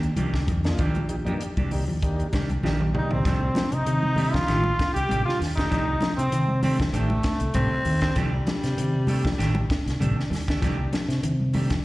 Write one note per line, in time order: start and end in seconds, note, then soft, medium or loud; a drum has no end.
0.03 muted clean electric guitar stroke soft
0.03 closed hi-hat soft
0.16 0.48 C2 medium
0.16 0.37 D#3 medium
0.16 0.36 F3 medium
0.16 0.37 A#3 medium
0.16 0.37 D4 medium
0.16 0.37 G4 medium
0.16 closed hi-hat medium
0.16 high conga medium
0.16 low conga medium
0.34 kick medium
0.34 snare medium
0.47 0.79 F2 medium
0.47 0.67 D#3 medium
0.47 muted clean electric guitar stroke soft
0.47 kick medium
0.47 closed hi-hat soft
0.47 high conga medium
0.47 low conga medium
0.64 0.82 A#3 medium
0.64 0.82 D4 medium
0.64 0.82 D#4 medium
0.64 0.82 F4 medium
0.64 muted clean electric guitar stroke soft
0.64 snare medium
0.64 closed hi-hat soft
0.78 1.28 A#1 loud
0.78 0.99 D#3 medium
0.78 0.98 D#3 medium
0.78 0.98 A#3 medium
0.78 0.99 D4 medium
0.78 0.99 G4 medium
0.78 kick medium
0.78 closed hi-hat medium
0.78 high conga soft
0.95 closed hi-hat soft
0.95 high conga medium
1.08 1.15 D#4 medium
1.08 1.16 G4 medium
1.08 muted clean electric guitar stroke soft
1.08 closed hi-hat medium
1.08 low conga medium
1.25 1.37 G2 medium
1.25 1.45 F3 medium
1.25 1.43 A#3 medium
1.25 1.40 A#3 medium
1.25 1.43 D4 medium
1.25 1.41 D4 medium
1.25 1.43 D#4 medium
1.25 1.44 G4 medium
1.25 1.41 G4 medium
1.25 closed hi-hat soft
1.41 muted fingered electric bass stroke soft
1.41 muted clean electric guitar stroke soft
1.41 closed hi-hat medium
1.41 high conga soft
1.57 1.88 C2 medium
1.57 1.71 D#3 medium
1.57 1.76 G3 medium
1.57 1.71 A#3 medium
1.57 1.71 D4 medium
1.57 1.71 G4 medium
1.57 kick medium
1.57 closed hi-hat soft
1.57 high conga medium
1.71 1.84 A#3 medium
1.71 1.84 D4 medium
1.71 1.85 D#4 medium
1.71 1.85 G4 medium
1.71 muted clean electric guitar stroke soft
1.71 open hi-hat medium
1.71 low conga medium
1.88 2.22 D#2 medium
1.88 2.06 F3 medium
1.88 muted clean electric guitar stroke soft
2.02 2.27 A#3 medium
2.02 2.27 D4 medium
2.02 2.27 D#4 medium
2.02 2.28 G4 medium
2.02 kick medium
2.02 closed hi-hat medium
2.02 high conga soft
2.19 muted clean electric guitar stroke soft
2.19 closed hi-hat soft
2.33 2.57 C2 medium
2.33 2.49 D#3 medium
2.33 2.51 G3 medium
2.33 2.50 A#3 medium
2.33 2.50 D4 medium
2.33 2.49 G4 medium
2.33 kick medium
2.33 snare medium
2.33 closed hi-hat medium
2.33 high conga medium
2.49 muted clean electric guitar stroke soft
2.49 closed hi-hat soft
2.49 high conga medium
2.63 2.91 A#1 medium
2.63 2.83 D#3 medium
2.63 2.82 F3 medium
2.63 2.83 A#3 medium
2.63 2.77 A#3 medium
2.63 2.83 D4 medium
2.63 2.77 D4 medium
2.63 2.77 D#4 medium
2.63 2.83 G4 medium
2.63 2.78 G4 medium
2.63 snare soft
2.63 low conga loud
2.80 mid tom soft
2.80 low conga medium
2.93 3.22 C2 medium
2.93 3.13 D#3 medium
2.93 3.19 A#3 medium
2.93 3.19 D4 medium
2.93 3.20 D#4 medium
2.93 3.11 D#4 medium
2.93 3.19 G4 medium
2.93 muted clean electric guitar stroke soft
2.93 mid tom medium
2.93 low conga medium
2.98 3.12 D#4 medium
3.11 3.76 C4 medium
3.11 muted clean electric guitar stroke soft
3.11 floor tom medium
3.11 low conga medium
3.25 3.49 C2 loud
3.25 3.42 D#3 medium
3.25 3.44 F3 medium
3.25 3.42 A3 medium
3.25 3.41 D4 medium
3.25 3.41 G4 medium
3.25 kick medium
3.25 snare soft
3.25 closed hi-hat medium
3.42 muted clean electric guitar stroke soft
3.55 3.74 F3 medium
3.55 muted clean electric guitar stroke soft
3.55 snare medium
3.55 closed hi-hat medium
3.55 high conga loud
3.72 3.84 C3 medium
3.72 4.35 D#4 loud
3.72 4.37 D#4 medium
3.72 closed hi-hat medium
3.86 4.34 C3 medium
3.86 4.05 D#3 medium
3.86 muted clean electric guitar stroke soft
3.86 closed hi-hat medium
3.86 low conga medium
4.02 high conga medium
4.16 4.34 D#3 medium
4.16 4.33 A3 medium
4.16 4.33 D4 medium
4.16 4.32 G4 medium
4.16 open hi-hat medium
4.16 high conga medium
4.16 low conga medium
4.33 4.43 F3 medium
4.33 4.93 F4 loud
4.33 4.96 F4 medium
4.33 muted clean electric guitar stroke soft
4.33 kick medium
4.33 snare medium
4.47 4.72 A1 medium
4.47 4.64 D#3 medium
4.47 4.67 D#3 medium
4.47 4.63 A3 medium
4.47 4.63 G4 medium
4.47 muted clean electric guitar stroke medium
4.47 snare soft
4.47 closed hi-hat medium
4.64 muted clean electric guitar stroke soft
4.64 high conga medium
4.78 muted clean electric guitar stroke soft
4.78 kick medium
4.78 snare medium
4.78 closed hi-hat medium
4.94 5.07 C2 medium
4.94 5.23 G4 loud
4.94 5.25 G4 medium
4.94 closed hi-hat medium
5.09 5.23 A1 medium
5.09 5.27 C3 medium
5.09 5.26 D#3 medium
5.09 5.24 A3 medium
5.09 5.24 D4 medium
5.09 5.24 G4 medium
5.09 closed hi-hat medium
5.09 high conga medium
5.25 5.39 F4 medium
5.25 5.41 F4 medium
5.25 muted clean electric guitar stroke soft
5.25 muted fingered electric bass stroke soft
5.25 snare soft
5.39 5.64 D#2 medium
5.39 5.59 D#3 medium
5.39 muted clean electric guitar stroke soft
5.39 snare soft
5.39 open hi-hat medium
5.39 low conga medium
5.56 5.69 A3 soft
5.56 5.69 D4 soft
5.56 6.14 D#4 loud
5.56 6.15 D#4 medium
5.56 5.69 G4 medium
5.56 kick medium
5.56 snare medium
5.56 closed hi-hat medium
5.70 5.95 C2 loud
5.70 5.87 D#3 medium
5.70 5.90 F3 medium
5.70 5.86 A3 medium
5.70 5.86 D4 medium
5.70 5.86 G4 medium
5.70 kick medium
5.70 snare soft
5.70 closed hi-hat medium
5.87 muted clean electric guitar stroke soft
6.01 6.20 F3 medium
6.01 muted clean electric guitar stroke soft
6.01 snare medium
6.01 closed hi-hat medium
6.01 high conga medium
6.17 6.29 C3 medium
6.17 6.60 C4 medium
6.17 6.61 C4 medium
6.17 closed hi-hat medium
6.32 6.80 C3 medium
6.32 6.51 D#3 medium
6.32 muted clean electric guitar stroke soft
6.32 closed hi-hat medium
6.48 high conga medium
6.63 6.80 D#3 medium
6.63 6.79 A3 medium
6.63 6.77 C4 medium
6.63 6.78 C4 medium
6.63 6.78 D4 medium
6.63 6.78 G4 medium
6.63 open hi-hat medium
6.63 high conga medium
6.63 low conga medium
6.78 6.87 F3 medium
6.78 muted clean electric guitar stroke soft
6.78 kick medium
6.78 snare medium
6.78 closed hi-hat medium
6.93 7.17 A1 loud
6.93 7.11 D#3 medium
6.93 7.10 D#3 medium
6.93 7.09 A3 medium
6.93 7.82 A3 medium
6.93 7.09 D4 medium
6.93 7.09 G4 medium
6.93 closed hi-hat medium
7.10 muted clean electric guitar stroke soft
7.10 high conga medium
7.23 muted clean electric guitar stroke soft
7.23 kick medium
7.23 snare medium
7.23 closed hi-hat medium
7.40 7.52 C2 medium
7.40 closed hi-hat medium
7.54 7.68 A1 loud
7.54 7.73 C3 medium
7.54 7.72 D#3 medium
7.54 7.71 A3 medium
7.54 7.99 C4 loud
7.54 7.71 D4 medium
7.54 7.70 G4 medium
7.54 kick medium
7.54 closed hi-hat medium
7.54 high conga medium
7.71 muted fingered electric bass stroke soft
7.71 muted clean electric guitar stroke medium
7.85 8.09 D#2 loud
7.85 8.04 D#3 medium
7.85 muted clean electric guitar stroke soft
7.85 open hi-hat medium
7.85 low conga medium
8.01 8.15 A3 soft
8.01 8.16 C4 medium
8.01 8.15 D4 medium
8.01 8.16 G4 medium
8.01 kick medium
8.01 snare medium
8.01 closed hi-hat medium
8.16 8.40 C2 loud
8.16 8.33 D#3 medium
8.16 8.35 F3 medium
8.16 8.32 A3 loud
8.16 8.32 D4 loud
8.16 8.31 G4 loud
8.16 kick medium
8.16 snare soft
8.16 closed hi-hat medium
8.32 9.52 G3 medium
8.32 muted clean electric guitar stroke medium
8.47 8.66 F3 medium
8.47 muted clean electric guitar stroke soft
8.47 snare medium
8.47 closed hi-hat soft
8.47 high conga medium
8.64 8.75 C3 medium
8.64 snare soft
8.64 closed hi-hat medium
8.77 9.25 C3 medium
8.77 8.96 D#3 medium
8.77 muted clean electric guitar stroke soft
8.77 closed hi-hat medium
8.77 low conga medium
9.07 9.24 D#3 medium
9.07 9.24 A3 medium
9.07 9.24 D4 medium
9.07 9.23 G4 medium
9.07 open hi-hat medium
9.07 high conga medium
9.07 low conga medium
9.25 9.34 F3 medium
9.25 muted clean electric guitar stroke soft
9.25 kick medium
9.25 snare medium
9.39 9.63 A1 loud
9.39 9.56 D#3 medium
9.39 9.57 D#3 medium
9.39 9.55 A3 medium
9.39 9.54 D4 medium
9.39 9.54 G4 loud
9.39 snare soft
9.39 closed hi-hat medium
9.55 muted clean electric guitar stroke soft
9.55 high conga loud
9.70 muted clean electric guitar stroke soft
9.70 kick medium
9.70 snare medium
9.70 closed hi-hat medium
9.86 9.97 C2 medium
9.86 snare soft
9.86 closed hi-hat medium
10.00 10.13 A1 medium
10.00 10.19 C3 medium
10.00 10.17 D#3 medium
10.00 10.16 A3 medium
10.00 10.16 D4 medium
10.00 10.16 G4 medium
10.00 closed hi-hat medium
10.00 high conga loud
10.00 low conga medium
10.17 muted clean electric guitar stroke medium
10.17 muted fingered electric bass stroke soft
10.17 snare soft
10.30 10.55 D#2 loud
10.30 10.49 D#3 medium
10.30 muted clean electric guitar stroke medium
10.30 snare soft
10.30 open hi-hat medium
10.30 high conga medium
10.30 low conga medium
10.48 10.61 A3 medium
10.48 10.61 D4 medium
10.48 10.62 G4 medium
10.48 kick medium
10.48 snare medium
10.48 closed hi-hat medium
10.61 10.86 C2 loud
10.61 10.79 D#3 medium
10.61 10.80 F3 medium
10.61 10.78 A3 medium
10.61 10.77 D4 medium
10.61 10.77 G4 loud
10.61 kick medium
10.61 snare soft
10.61 closed hi-hat medium
10.78 muted clean electric guitar stroke soft
10.93 11.11 F3 medium
10.93 muted clean electric guitar stroke soft
10.93 snare medium
10.93 closed hi-hat medium
10.93 high conga medium
11.09 11.20 C3 medium
11.09 snare soft
11.09 closed hi-hat soft
11.23 11.71 C3 medium
11.23 11.41 D#3 medium
11.23 muted clean electric guitar stroke soft
11.23 closed hi-hat medium
11.23 low conga medium
11.40 high conga medium
11.53 11.70 D#3 medium
11.53 11.70 A3 medium
11.53 11.70 D4 medium
11.53 11.70 G4 medium
11.53 open hi-hat medium
11.53 high conga medium
11.53 low conga medium
11.70 11.79 F3 medium
11.70 muted clean electric guitar stroke soft
11.70 kick medium
11.70 snare medium
11.70 closed hi-hat medium